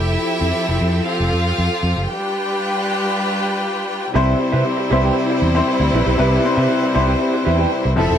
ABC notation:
X:1
M:4/4
L:1/16
Q:1/4=117
K:C
V:1 name="Clean electric guitar"
z16 | z16 | [EGBe]2 z [EGBe] z2 [EGBe] [EGBg] z6 [EGBe] [EGBe] | [EGBe]2 z [EGBe] z2 [EGBe] [EGBg] z2 [EGBe] [EGBg] z2 [EAce] [EAce] |]
V:2 name="Violin section"
[Ee]8 [Ff]8 | [Gg]16 | [G,Ec]16- | [G,Ec]12- [G,Ec]2 [CAe]2 |]
V:3 name="Grand piano"
z16 | z16 | [C,CEc]4 z2 [C,CEc]3 z2 [C,CEc]3 z2 | [C,CEB] z [C,CEc]3 z [C,CEc]4- [C,CEc] z3 [F,CEA]2 |]
V:4 name="String section"
[F,CGA]16 | [G,DFB]16 | [C,G,CE]16- | [C,G,CE]12- [C,G,CE]2 [F,CEA]2 |]
V:5 name="Fingered electric bass" clef=bass
F,,,2 z F,, z F,,, F,,2 z F,,, F,,2 F,, z F,, ^F,,, | z16 | C,,2 z C, z2 C,,2 z2 E,,2 z D,, _B,,, =B,,, | C,,2 z C, z2 C,,2 z2 E,,2 z C,, F,,, E,,, |]